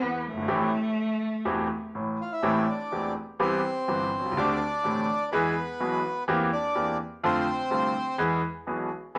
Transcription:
0.00 0.20 E2 medium
0.00 0.21 E3 soft
0.00 0.28 B3 medium
0.26 1.96 A3 medium
0.30 0.36 F#1 soft
0.37 0.43 G1 medium
0.42 0.49 G#1 medium
0.48 0.69 A1 medium
0.48 0.69 A2 medium
0.48 0.69 E3 medium
0.48 0.69 A3 medium
0.48 0.69 C4 medium
0.48 0.69 G4 medium
1.45 1.66 E1 medium
1.45 1.66 E2 medium
1.45 1.66 E3 medium
1.45 1.66 A3 medium
1.45 1.66 C4 medium
1.45 1.66 G4 medium
1.95 2.15 A1 medium
1.95 2.15 A2 medium
2.21 2.31 F4 medium
2.21 2.33 F5 medium
2.32 2.66 E4 medium
2.32 2.70 E5 medium
2.42 2.64 A1 medium
2.42 2.64 A2 medium
2.42 2.63 E3 medium
2.42 2.64 A3 medium
2.42 2.64 C4 medium
2.42 2.64 G4 medium
2.69 3.14 D4 medium
2.69 3.13 D5 medium
2.92 3.12 E1 medium
2.92 3.12 E2 soft
2.92 3.12 E3 soft
2.92 3.12 A3 soft
2.92 3.12 C4 soft
2.92 3.12 G4 medium
3.39 3.60 C2 medium
3.39 3.60 C3 medium
3.39 3.60 E3 medium
3.39 3.60 B3 medium
3.39 3.60 C4 medium
3.39 4.34 C4 medium
3.39 3.60 G4 medium
3.39 4.40 C5 loud
3.88 4.09 G1 medium
3.88 4.09 G2 medium
3.88 4.09 E3 soft
3.88 4.09 B3 soft
3.88 4.09 C4 soft
3.88 4.09 G4 soft
4.19 4.25 B1 soft
4.25 4.31 C2 medium
4.31 4.37 C#2 medium
4.37 4.57 D2 medium
4.37 4.57 D3 medium
4.37 4.57 A3 medium
4.37 4.57 C4 medium
4.37 5.30 D4 medium
4.37 4.57 G4 medium
4.37 5.29 D5 loud
4.84 5.05 A1 medium
4.84 5.05 A2 medium
4.84 5.04 D3 soft
4.84 5.05 A3 soft
4.84 5.05 C4 soft
4.84 5.05 G4 soft
5.32 5.53 E2 medium
5.32 5.53 E3 medium
5.32 5.53 G#3 medium
5.32 5.53 B3 medium
5.32 6.25 B3 medium
5.32 5.53 G#4 medium
5.32 6.23 B4 loud
5.80 6.00 B1 medium
5.80 6.00 B2 medium
5.80 6.00 E3 medium
5.80 6.00 G#3 soft
5.80 6.00 B3 soft
5.80 6.01 G#4 medium
6.28 6.48 E2 medium
6.28 6.48 E3 medium
6.28 6.48 A#3 medium
6.28 6.48 C4 medium
6.28 6.48 G4 medium
6.52 6.98 D4 medium
6.52 6.97 D5 loud
6.75 6.96 E2 medium
6.75 6.96 E3 medium
6.75 6.96 A#3 soft
6.75 6.96 C4 soft
6.75 6.96 G4 medium
7.23 7.44 F2 medium
7.23 7.44 D3 medium
7.23 7.44 F3 medium
7.23 7.44 A3 medium
7.23 7.44 C4 medium
7.23 8.17 C4 medium
7.23 7.44 F4 medium
7.23 8.23 C5 loud
7.70 7.91 C2 medium
7.70 7.91 C3 medium
7.70 7.91 D3 soft
7.70 7.91 A3 soft
7.70 7.91 C4 soft
7.70 7.91 F4 medium
8.18 8.39 E2 medium
8.18 8.39 E3 medium
8.18 8.39 G#3 medium
8.18 8.39 B3 medium
8.18 8.39 G#4 medium
8.67 8.88 B1 medium
8.67 8.88 B2 medium
8.67 8.87 E3 soft
8.67 8.88 G#3 soft
8.67 8.88 B3 soft
8.67 8.88 G#4 medium
9.15 9.18 E3 medium
9.15 9.18 G#3 medium

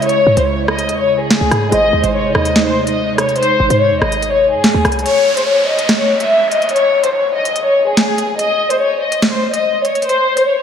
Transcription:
0.00 0.23 C#2 loud
0.00 1.68 C#3 medium
0.00 1.69 C#3 medium
0.00 1.68 G#3 medium
0.00 1.69 E4 medium
0.00 1.69 C#5 medium
0.00 closed hi-hat medium
0.06 0.35 C#5 loud
0.06 closed hi-hat medium
0.27 0.36 G#2 loud
0.37 0.90 C#2 loud
0.37 0.46 C5 medium
0.37 closed hi-hat medium
0.47 0.66 C#5 medium
0.68 0.97 D#5 medium
0.68 cross-stick loud
0.79 closed hi-hat medium
0.89 1.16 E2 loud
0.89 closed hi-hat medium
0.99 1.18 C#5 medium
1.15 1.40 C#2 loud
1.21 1.69 G#4 medium
1.31 snare loud
1.31 closed hi-hat medium
1.41 1.51 C#2 loud
1.51 1.71 G#2 loud
1.51 cross-stick medium
1.51 closed hi-hat medium
1.71 1.92 G#1 loud
1.71 5.02 C3 medium
1.71 5.01 G#3 medium
1.71 5.02 G#3 medium
1.71 5.02 D#4 loud
1.71 5.01 G#4 medium
1.71 5.02 C5 medium
1.71 2.02 D#5 loud
1.71 5.02 D#5 medium
1.71 closed hi-hat loud
1.93 2.03 D#2 loud
2.04 2.26 G#1 loud
2.04 2.13 C5 medium
2.04 closed hi-hat medium
2.14 2.32 C#5 medium
2.24 2.34 F#1 loud
2.35 3.56 D#2 loud
2.35 2.64 D#5 medium
2.35 cross-stick loud
2.45 closed hi-hat medium
2.56 snare loud
2.56 closed hi-hat medium
2.66 2.84 C5 medium
2.87 3.16 D#5 medium
2.87 closed hi-hat medium
3.18 3.36 C#5 medium
3.18 cross-stick medium
3.18 closed hi-hat medium
3.29 closed hi-hat medium
3.36 3.68 C5 loud
3.36 closed hi-hat medium
3.43 closed hi-hat medium
3.60 3.70 G#1 loud
3.70 3.93 G#2 loud
3.70 3.79 C5 medium
3.70 closed hi-hat medium
3.81 3.99 C#5 medium
3.91 4.01 D#2 loud
4.01 4.55 G#1 loud
4.01 4.31 D#5 medium
4.01 cross-stick medium
4.12 closed hi-hat medium
4.22 closed hi-hat medium
4.33 4.51 C#5 medium
4.53 4.73 G#2 loud
4.53 5.02 G#4 medium
4.64 snare loud
4.64 closed hi-hat medium
4.74 4.84 D#2 loud
4.85 5.05 C2 loud
4.85 cross-stick medium
4.85 closed hi-hat medium
4.92 closed hi-hat medium
4.99 closed hi-hat medium
5.05 5.35 C#5 loud
5.05 closed hi-hat loud
5.05 downlifter medium
5.37 5.46 C5 medium
5.37 closed hi-hat medium
5.47 5.65 C#5 medium
5.68 5.97 D#5 medium
5.79 closed hi-hat medium
5.89 snare loud
5.89 closed hi-hat medium
6.00 6.18 C#5 medium
6.20 6.50 E5 medium
6.20 closed hi-hat medium
6.51 6.70 D#5 medium
6.51 closed hi-hat medium
6.62 closed hi-hat medium
6.69 closed hi-hat medium
6.73 7.02 C#5 loud
6.73 closed hi-hat medium
7.04 7.13 C5 medium
7.04 closed hi-hat medium
7.14 7.32 C#5 medium
7.35 7.64 D#5 medium
7.45 closed hi-hat medium
7.56 closed hi-hat medium
7.66 7.84 C#5 medium
7.87 8.36 G#4 medium
7.97 snare loud
7.97 closed hi-hat medium
8.18 closed hi-hat medium
8.39 8.68 D#5 loud
8.39 closed hi-hat loud
8.70 8.80 C5 medium
8.70 closed hi-hat medium
8.81 8.99 C#5 medium
9.01 9.31 D#5 medium
9.12 closed hi-hat medium
9.22 snare loud
9.22 closed hi-hat medium
9.32 9.51 C5 medium
9.53 9.83 D#5 medium
9.53 closed hi-hat medium
9.85 10.03 C#5 medium
9.85 closed hi-hat medium
9.95 closed hi-hat medium
10.02 10.35 C5 loud
10.02 closed hi-hat medium
10.09 closed hi-hat medium
10.37 10.46 C5 medium
10.37 closed hi-hat medium
10.48 10.62 C#5 medium

